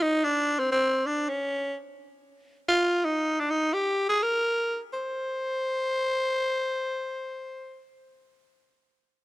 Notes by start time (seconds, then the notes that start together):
0.02 D#4
0.24 D4
0.59 C4
0.72 C4
1.06 D4
1.29 C#4
2.68 F4
3.05 D#4
3.40 D4
3.51 D#4
3.73 G4
4.09 G#4
4.23 A#4
4.93 C5